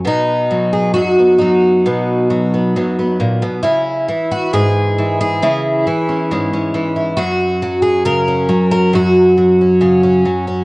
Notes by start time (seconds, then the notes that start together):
0.05 B2 D#4
0.51 F#3
0.73 G#4
0.94 F#2 F#4
1.19 B3
1.38 F#3 D#4
1.86 B2 B3
2.30 F#3
2.54 B3
2.76 F#2 B3
2.99 B3
3.20 A#2
3.42 B2
3.63 C#3 E4
4.08 E3
4.32 F#4
4.53 G#2 G#4
4.98 E3
5.21 G#4
5.42 C#3 E4
5.87 E3
6.09 C#4
6.31 G#2 C#4
6.53 C#4
6.74 E3
6.96 E4
7.17 F#2 F#4
7.62 F#3
7.82 G#4
8.05 C#3 A#4
8.28 C#4
8.49 F#3
8.71 A#4
8.93 F#2 F#4
9.38 F#3
9.61 C#4
9.81 C#3 C#4
10.03 C#4
10.25 F#3
10.47 C#4